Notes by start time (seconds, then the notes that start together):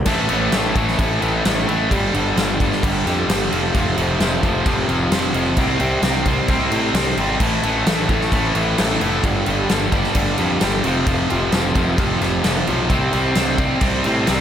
0.05 A1 A2 E3 A3, kick, crash
0.29 A1 A2 E3 A3, crash
0.52 A1 A2 E3 A3, snare, crash
0.75 A1 A2 E3 A3, kick, crash
0.88 snare
0.98 A1 A2 E3 A3, kick, crash
1.21 A1 A2 E3 A3, crash
1.45 A1 A2 E3 A3, snare, crash
1.68 A1 A2 E3 A3, crash
1.91 G1 G2 D3 G3, kick, crash
2.14 G1 G2 D3 G3, crash
2.37 G1 G2 D3 G3, snare, crash
2.60 G2 D3 G3, kick, crash
2.72 snare
2.83 G1 G2 D3 G3, kick, crash
3.06 F2 G2 D3 G3, snare, crash
3.28 G1 G2 D3 G3, snare, crash
3.51 F1 F2 C3 F3, crash
3.74 F1 F2 C3 F3, kick, crash
3.97 F1 F2 C3 F3, crash
4.20 F1 F2 C3 F3, snare, crash
4.42 F1 F2 C3 F3, kick, crash
4.66 F1 F2 C3 F3, kick, crash
4.88 F1 F2 C3 F3, crash
5.10 F1 F2 C3 F3, snare, crash
5.33 F1 F2 C3 F3, crash
5.57 C2 C3 G3 C4, kick, crash
5.79 C2 C3 G3 C4, crash
6.02 C2 C3 G3 C4, snare, crash
6.26 C3 G3 C4, kick, crash
6.48 C2 C3 G3 C4, kick, crash
6.71 A2 C3 G3 C4, crash
6.94 C2 C3 G3 C4, snare, crash
7.17 G#1 C3 G3 C4, crash
7.40 A1 A2 E3 A3, kick, crash
7.63 A1 A2 E3 A3, crash
7.86 A1 A2 E3 A3, snare, crash
8.09 A1 A2 E3 A3, kick, crash
8.21 snare
8.32 A1 A2 E3 A3, kick, crash
8.55 A1 A2 E3 A3, crash
8.78 A1 A2 E3 A3, snare, crash
9.01 F1 A2 E3 A3, crash
9.23 G1 G2 D3 G3, kick, crash
9.46 G1 G2 D3 G3, crash
9.69 G1 G2 D3 G3, snare, crash
9.92 G2 D3 G3, kick, crash
10.04 snare
10.15 G1 G2 D3 G3, kick, crash
10.38 F2 G2 D3 G3, crash
10.61 G1 G2 D3 G3, snare, crash
10.84 F1 F2 C3 F3, crash
11.06 F1 F2 C3 F3, kick, crash
11.30 F1 F2 C3 F3, crash
11.52 F1 F2 C3 F3, snare, crash
11.75 F1 F2 C3 F3, kick, crash
11.98 F1 F2 C3 F3, kick, crash
12.21 F1 F2 C3 F3, snare, crash
12.44 F1 F2 C3 F3, snare, crash
12.67 B1 F2 C3 F3, crash
12.90 C2 C3 G3 C4, kick, crash
13.13 C2 C3 G3 C4, crash
13.35 C2 C3 G3 C4, snare, crash
13.58 C3 G3 C4, kick, crash
13.81 C2 C3 G3 C4, kick, crash
14.04 A2 C3 G3 C4, crash
14.27 C2 C3 G3 C4, snare, crash